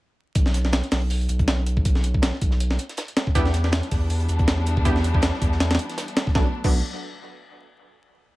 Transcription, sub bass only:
0.35 0.82 B1 loud
0.92 1.28 B1 medium
1.29 1.84 B1 medium
1.85 2.32 B1 loud
2.42 2.78 B1 medium
3.35 3.81 E2 loud
3.91 4.28 E2 medium
4.29 4.84 E2 medium
4.85 5.32 E2 loud
5.42 5.78 E2 medium
6.35 6.47 B1 medium
6.64 6.82 B1 loud

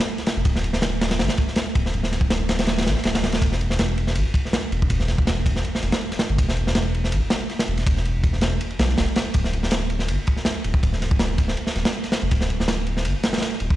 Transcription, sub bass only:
0.37 0.45 F1 loud
0.45 1.21 D1 loud
1.19 1.28 G1 medium
1.75 1.92 D1 medium
1.94 2.88 D1 loud
2.86 2.95 A1 loud
3.04 3.40 D1 medium
3.42 4.17 E1 loud
4.16 4.25 A1 medium
4.72 4.88 E1 medium
4.90 5.63 E1 loud
5.83 5.92 E1 medium
6.29 6.37 G1 loud
6.38 7.14 E1 loud
7.12 7.21 A1 medium
7.68 7.85 E1 medium
7.86 8.59 E1 loud
8.79 8.96 B1 loud
8.97 9.06 E1 medium
9.35 10.10 D1 loud
10.08 10.17 G1 medium
10.64 10.81 D1 medium
10.83 11.56 D1 loud
11.76 11.84 D1 medium
12.22 12.30 F1 loud
12.31 13.07 D1 loud
13.05 13.14 G1 medium
13.61 13.76 D1 medium

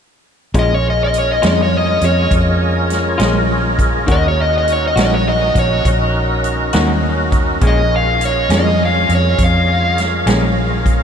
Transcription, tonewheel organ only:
0.54 4.05 C#4 medium
0.54 4.05 F4 medium
0.54 4.05 G#4 medium
0.54 4.05 A#4 medium
4.08 7.59 C#4 medium
4.08 7.59 D#4 medium
4.08 7.59 F#4 medium
4.08 7.59 A#4 medium
7.62 11.03 C#4 medium
7.62 11.03 F4 medium
7.62 11.03 G#4 medium
7.62 11.03 A#4 medium

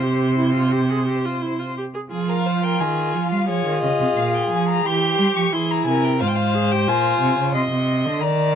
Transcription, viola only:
0.03 0.38 G4 medium
0.38 0.54 E4 medium
0.55 0.74 F4 medium
0.72 0.92 G4 medium
0.90 1.07 G#4 medium
1.08 1.27 G4 medium
1.25 1.44 F4 medium
1.42 1.61 E4 medium
1.59 1.77 F4 soft
1.77 1.84 G4 medium
1.94 2.01 G#4 medium
2.12 3.45 F4 medium
3.49 4.87 G#4 medium
4.85 5.54 G4 medium
5.53 6.20 E4 medium
6.21 6.56 F4 medium
6.54 6.73 G#4 medium
6.72 6.89 G4 medium
6.88 7.55 F4 medium

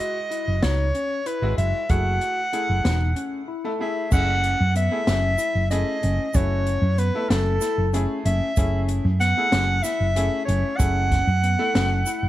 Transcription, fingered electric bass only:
0.48 0.61 F#1 medium
0.63 0.90 C#2 medium
1.42 1.56 G#1 medium
1.58 1.71 F#1 medium
1.90 2.17 F#1 medium
2.69 2.83 F#1 medium
2.85 3.12 E1 medium
4.12 4.53 F#1 medium
4.61 4.88 F#2 medium
5.07 5.35 F#1 medium
5.55 5.83 F#1 medium
6.04 6.17 F#1 medium
6.35 6.76 F#1 medium
6.82 7.09 F#2 medium
7.30 7.57 F#1 loud
7.78 8.05 F#1 medium
8.25 8.39 F#1 loud
8.57 8.98 F#1 medium
9.05 9.32 F#2 medium
9.52 9.80 F#1 loud
10.00 10.28 F#1 medium
10.48 10.62 F#1 medium
10.80 11.21 F#1 medium
11.27 11.55 F#2 medium
11.75 12.03 F#1 medium
12.23 12.29 F#1 medium

